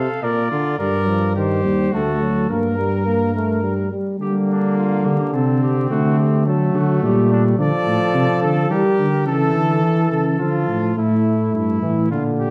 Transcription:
0.00 0.22 A4 medium
0.00 0.24 F5 medium
0.23 0.51 A#2 medium
0.23 0.51 A#4 medium
0.23 0.78 D5 medium
0.51 0.79 D3 medium
0.51 0.78 F4 medium
0.79 1.66 G2 medium
0.79 1.10 G3 medium
0.79 1.32 A#4 medium
0.79 1.32 D5 medium
1.08 1.36 F3 medium
1.36 1.64 D#3 medium
1.36 1.94 G4 medium
1.36 1.92 C5 medium
1.65 1.92 D#2 medium
1.65 1.94 G3 medium
1.93 2.48 D2 medium
1.93 2.20 A3 medium
1.93 2.49 F#4 medium
1.93 2.49 A4 medium
2.21 2.49 F#3 medium
2.49 3.89 G2 medium
2.49 2.77 A#3 medium
2.49 3.89 A#4 medium
2.78 3.06 G3 soft
3.06 3.34 A#3 medium
3.35 3.63 A3 medium
3.63 3.91 G3 medium
3.92 4.20 G3 soft
4.20 5.86 D3 medium
4.20 5.01 G3 medium
4.20 5.30 A#3 medium
4.20 4.33 G4 medium
4.49 4.77 D4 medium
4.78 5.07 F4 medium
5.05 5.18 D3 medium
5.05 5.35 G4 medium
5.33 5.89 C3 medium
5.33 6.44 C4 medium
5.33 5.62 A4 medium
5.63 5.90 G4 medium
5.90 6.73 D3 medium
5.90 6.45 A3 medium
5.90 6.18 F#4 medium
6.19 6.46 G4 medium
6.46 7.04 F#3 medium
6.46 7.57 A3 medium
6.46 6.77 A4 medium
6.74 7.02 D3 medium
6.74 7.03 F#4 medium
7.02 7.58 A#2 medium
7.02 7.58 G3 medium
7.02 7.31 G4 medium
7.32 7.44 D4 medium
7.58 7.71 D3 medium
7.58 8.72 F3 medium
7.58 8.73 A4 medium
7.58 8.42 D5 medium
7.86 7.99 A2 medium
8.14 8.27 C3 medium
8.42 8.70 D3 medium
8.42 8.70 A4 medium
8.71 8.83 E3 medium
8.71 9.10 G3 medium
8.71 9.26 G4 medium
8.71 9.26 A#4 medium
8.99 9.28 D3 medium
9.27 9.54 C#3 medium
9.27 10.38 E3 medium
9.27 9.82 A4 medium
9.27 10.10 A4 medium
9.55 9.84 D3 medium
9.83 10.11 E3 medium
9.83 10.95 A4 medium
10.11 10.39 C#3 medium
10.11 10.25 A4 medium
10.40 10.67 D3 medium
10.40 10.96 F3 medium
10.40 10.96 F4 medium
10.68 10.96 A2 medium
10.96 11.50 A2 medium
10.96 11.78 A3 medium
10.96 11.50 E4 medium
11.53 11.81 G2 medium
11.53 12.10 E4 medium
11.82 12.12 A2 medium
11.82 12.10 E3 medium
12.10 12.50 A#2 medium
12.10 12.50 D3 medium
12.10 12.24 F4 medium
12.40 12.50 G4 medium

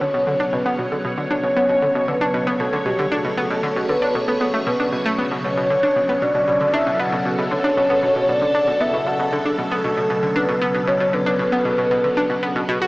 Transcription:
0.00 12.87 B2 medium
0.00 12.87 C#3 medium
0.00 0.05 D3 medium
0.00 12.87 F#3 medium
0.00 6.48 C#5 medium
0.00 0.55 C#5 loud
0.14 0.24 B2 medium
0.27 0.33 D3 medium
0.40 0.50 D4 medium
0.53 0.57 B2 medium
0.53 0.92 B4 medium
0.66 0.76 B3 medium
0.79 0.85 B2 medium
0.92 0.96 D3 medium
1.05 1.14 B2 medium
1.18 1.24 D3 medium
1.31 1.40 D4 medium
1.31 2.10 C#5 loud
1.44 1.47 B2 medium
1.57 1.66 B3 medium
1.69 1.76 B2 medium
1.82 1.86 D3 medium
1.95 2.05 B2 medium
2.08 2.15 D3 medium
2.08 2.62 B4 loud
2.21 2.31 D4 medium
2.34 2.38 B2 medium
2.47 2.57 B3 medium
2.60 2.66 B2 medium
2.60 2.87 A4 medium
2.73 2.77 D3 medium
2.86 2.95 B2 medium
2.86 3.13 G4 medium
2.99 3.05 D3 medium
3.12 3.21 D4 medium
3.12 3.91 A4 loud
3.25 3.28 B2 medium
3.38 3.47 B3 medium
3.50 3.57 B2 medium
3.63 3.67 D3 medium
3.76 3.86 B2 medium
3.89 3.96 D3 medium
3.89 4.17 B4 loud
4.02 4.12 D4 medium
4.15 4.19 B2 medium
4.15 4.68 A4 loud
4.28 4.38 B3 medium
4.41 4.45 B3 medium
4.54 4.58 A3 medium
4.67 4.71 B2 loud
4.67 5.06 B4 medium
4.80 4.89 D4 medium
4.92 4.96 B2 medium
5.06 5.12 A3 loud
5.18 5.28 B3 medium
5.31 5.38 B2 medium
5.44 5.54 B2 medium
5.44 6.23 C#5 medium
5.57 5.67 B2 medium
5.70 5.77 D3 medium
5.83 5.93 D4 medium
5.96 6.00 B2 medium
6.09 6.19 B3 medium
6.22 6.28 B2 medium
6.22 6.75 D5 medium
6.35 6.45 B2 medium
6.46 6.57 B2 medium
6.46 12.87 A4 medium
6.61 6.67 D3 medium
6.74 6.83 D4 medium
6.74 7.01 E5 loud
6.87 6.90 B2 medium
6.99 7.09 B3 medium
6.99 7.25 F#5 loud
7.13 7.19 B2 medium
7.25 7.35 B2 medium
7.38 7.48 B2 medium
7.51 7.58 D3 medium
7.51 8.30 C#5 medium
7.64 7.74 D4 medium
7.77 7.81 B2 medium
7.90 8.00 B3 medium
8.03 8.09 B2 medium
8.16 8.26 B2 medium
8.29 8.38 B2 medium
8.29 8.82 D5 loud
8.42 8.48 D3 medium
8.55 8.64 D4 medium
8.68 8.71 B2 medium
8.81 8.90 B3 medium
8.81 9.08 E5 loud
8.93 9.00 B2 medium
9.06 9.16 B2 medium
9.06 9.32 F#5 loud
9.19 9.29 B2 medium
9.33 9.39 D3 medium
9.45 9.55 D4 medium
9.58 9.62 B2 medium
9.58 10.37 A4 loud
9.71 9.81 B3 medium
9.84 9.91 B2 medium
9.97 10.07 B2 medium
10.10 10.20 B2 medium
10.23 10.29 D3 medium
10.36 10.45 D4 medium
10.36 10.89 B4 loud
10.49 10.53 B2 medium
10.62 10.71 B3 medium
10.74 10.81 B2 medium
10.87 10.97 B2 medium
10.87 11.15 C#5 loud
11.00 11.10 B2 medium
11.13 11.20 D3 medium
11.13 12.87 B4 loud
11.26 11.36 D4 medium
11.39 11.43 B2 medium
11.52 11.62 B3 medium
11.65 11.72 B2 medium
11.78 11.88 B2 medium
11.91 12.01 B2 medium
12.04 12.10 D3 medium
12.17 12.27 D4 medium
12.30 12.34 B2 medium
12.43 12.52 B3 medium
12.56 12.62 B2 medium
12.69 12.78 B2 loud
12.82 12.87 F#4 medium

